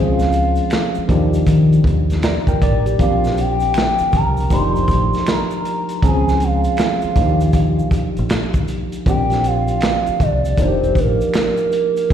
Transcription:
Already playing: fingered electric bass C#2, tine electric piano F3 G#3 C4 C#4 G#4, soft synth lead F5
0.19 snare, closed hi-hat, shaker
0.32 closed hi-hat, shaker
0.55 closed hi-hat, shaker
0.70 finger snap, snare, closed hi-hat, shaker
0.95 muted fingered electric bass stroke, shaker
1.08 fingered electric bass D#2, tine electric piano F3 A#3 D4 D#4 G4, kick, closed hi-hat
1.34 closed hi-hat, shaker
1.47 fingered electric bass D#3, kick, closed hi-hat, shaker
1.73 closed hi-hat, shaker
1.84 fingered electric bass D#2, kick, closed hi-hat
2.10 snare, closed hi-hat, shaker
2.22 tine electric piano D5 A#5, finger snap, snare, closed hi-hat, shaker
2.47 fingered electric bass F2, tine electric piano A#4 G5, kick, closed hi-hat, shaker
2.62 fingered electric bass A1, tine electric piano D5, kick, closed hi-hat, shaker
2.86 tine electric piano G4, closed hi-hat, shaker
2.99 fingered electric bass A#1, tine electric piano F3 A#3 C4 D4 G4, soft synth lead F5, kick, closed hi-hat, shaker
3.24 snare, closed hi-hat, shaker
3.37 soft synth lead G5, closed hi-hat, shaker
3.60 closed hi-hat, shaker
3.74 finger snap, snare, closed hi-hat, shaker
3.99 muted fingered electric bass stroke, closed hi-hat, shaker
4.13 fingered electric bass C2, soft synth lead A#5, kick, closed hi-hat, shaker
4.37 closed hi-hat, shaker
4.50 fingered electric bass F1, tine electric piano F3 A#3 D4 D#4 G4, soft synth lead C6, kick, closed hi-hat, shaker
4.76 closed hi-hat, shaker
4.88 fingered electric bass A1, kick, closed hi-hat, shaker
5.13 snare, closed hi-hat, shaker
5.27 soft synth lead A#5, finger snap, snare, closed hi-hat, shaker
5.51 closed hi-hat, shaker
5.65 closed hi-hat, shaker
5.89 closed hi-hat, shaker
6.02 fingered electric bass C#2, tine electric piano E3 G#3 C4 C#4 G#4, soft synth lead G#5, kick, closed hi-hat, shaker
6.09 tine electric piano F3
6.28 snare, shaker
6.40 soft synth lead F5, closed hi-hat, shaker
6.64 closed hi-hat, shaker
6.77 finger snap, snare, closed hi-hat, shaker
7.01 muted fingered electric bass stroke, closed hi-hat, shaker
7.16 fingered electric bass D#2, tine electric piano F3 A#3 D4 D#4 F4, kick, closed hi-hat, shaker
7.26 tine electric piano G4
7.41 closed hi-hat, shaker
7.53 kick, closed hi-hat, shaker
7.79 shaker
7.91 muted fingered electric bass stroke, kick, closed hi-hat, shaker
8.17 fingered electric bass A#1, closed hi-hat, shaker
8.29 finger snap, snare, closed hi-hat, shaker
8.53 kick, closed hi-hat, shaker
8.68 closed hi-hat, shaker
8.92 closed hi-hat, shaker
9.06 fingered electric bass A#1, tine electric piano F3 A#3 C4 D4 G4, soft synth lead G5, kick, closed hi-hat, shaker
9.30 snare, closed hi-hat, shaker
9.44 soft synth lead F5, closed hi-hat, shaker
9.68 closed hi-hat, shaker
9.81 finger snap, snare, closed hi-hat, shaker
10.06 muted fingered electric bass stroke, closed hi-hat, shaker
10.20 fingered electric bass C2, soft synth lead D5, kick, closed hi-hat, shaker
10.45 closed hi-hat, shaker
10.58 fingered electric bass F1, tine electric piano F3 A#3 D4 D#4, soft synth lead C5, kick, closed hi-hat, shaker
10.62 tine electric piano F4
10.68 tine electric piano G4
10.84 closed hi-hat, shaker
10.95 fingered electric bass A1, soft synth lead A#4, kick, closed hi-hat, shaker
11.21 closed hi-hat, shaker
11.34 finger snap, snare, closed hi-hat, shaker
11.57 closed hi-hat, shaker
11.72 closed hi-hat, shaker
11.97 closed hi-hat, shaker

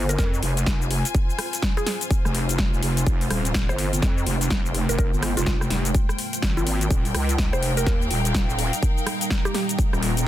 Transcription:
Already playing: wobble bass G1, ambient pad G#3 C4 F4 C5, string section F4 C5 G#5, impact
0.09 synth pluck A#4, closed hi-hat, cabasa
0.18 wobble bass F2, synth pluck A#4, kick, snare, closed hi-hat, cabasa
0.34 cabasa
0.43 wobble bass F1, open hi-hat
0.57 closed hi-hat, cabasa
0.66 wobble bass F1, kick, snare, closed hi-hat, cabasa
0.82 cabasa
0.91 open hi-hat
1.05 closed hi-hat, cabasa
1.15 kick, closed hi-hat, cabasa
1.30 cabasa
1.39 cross-stick, open hi-hat
1.53 closed hi-hat, cabasa
1.62 kick, snare, closed hi-hat, cabasa
1.77 synth pluck G#4, cross-stick, cabasa
1.86 synth pluck G#4, snare, open hi-hat
2.01 closed hi-hat, cabasa
2.11 kick, closed hi-hat, cabasa
2.25 wobble bass F1, cross-stick, cabasa
2.35 open hi-hat
2.49 closed hi-hat, cabasa
2.58 kick, snare, closed hi-hat, cabasa
2.73 wobble bass F1, cabasa
2.83 wobble bass F1, open hi-hat
2.97 closed hi-hat, cabasa
3.07 wobble bass F1, ambient pad A#4, kick, closed hi-hat, cabasa
3.21 open hi-hat, cabasa
3.31 wobble bass D#1, cross-stick, open hi-hat
3.45 closed hi-hat, cabasa
3.54 kick, snare, closed hi-hat, cabasa
3.69 wobble bass G1, synth pluck C5, cross-stick, cabasa
3.79 open hi-hat
3.90 string section G5, closed hi-hat, cabasa
4.02 wobble bass F2, kick, snare, closed hi-hat, cabasa
4.18 cabasa
4.27 wobble bass F1, open hi-hat
4.41 closed hi-hat, cabasa
4.50 wobble bass F1, kick, snare, closed hi-hat, cabasa
4.66 cabasa
4.75 open hi-hat
4.89 wobble bass F1, synth pluck A#4, closed hi-hat, cabasa
4.99 synth pluck A#4, kick, closed hi-hat, cabasa
5.13 wobble bass G1, cabasa
5.23 cross-stick, open hi-hat
5.37 wobble bass F1, synth pluck F4, closed hi-hat, cabasa
5.46 wobble bass F1, synth pluck F4, kick, snare, closed hi-hat, cabasa
5.61 cross-stick, cabasa
5.70 wobble bass F1, snare, open hi-hat
5.85 closed hi-hat, cabasa
5.95 kick, closed hi-hat, cabasa
6.09 cross-stick, cabasa
6.19 open hi-hat
6.33 closed hi-hat, cabasa
6.42 wobble bass G#1, kick, snare, closed hi-hat, cabasa
6.57 synth pluck F4, cabasa
6.67 open hi-hat
6.81 closed hi-hat, cabasa
6.91 wobble bass D#1, ambient pad G3 A#3 D#4, string section D#4, kick, closed hi-hat, cabasa
6.99 string section A#4
7.05 open hi-hat, cabasa
7.15 wobble bass C#2, cross-stick, open hi-hat
7.29 closed hi-hat, cabasa
7.38 kick, snare, closed hi-hat, cabasa
7.43 string section F5
7.53 wobble bass F1, synth pluck C5, cross-stick, cabasa
7.63 open hi-hat
7.77 synth pluck A#4, closed hi-hat, cabasa
7.86 wobble bass D#2, synth pluck A#4, kick, snare, closed hi-hat, cabasa
8.02 cabasa
8.11 wobble bass D#1, open hi-hat
8.25 closed hi-hat, cabasa
8.34 wobble bass D#1, kick, snare, closed hi-hat, cabasa
8.50 cabasa
8.59 open hi-hat
8.73 closed hi-hat, cabasa
8.83 kick, closed hi-hat, cabasa
8.98 cabasa
9.07 cross-stick, open hi-hat
9.21 closed hi-hat, cabasa
9.30 kick, snare, closed hi-hat, cabasa
9.45 synth pluck G4, cross-stick, cabasa
9.54 synth pluck G4, snare, open hi-hat
9.69 closed hi-hat, cabasa
9.79 kick, closed hi-hat, cabasa
9.93 wobble bass D#1, cross-stick, cabasa
10.03 open hi-hat
10.17 closed hi-hat, cabasa

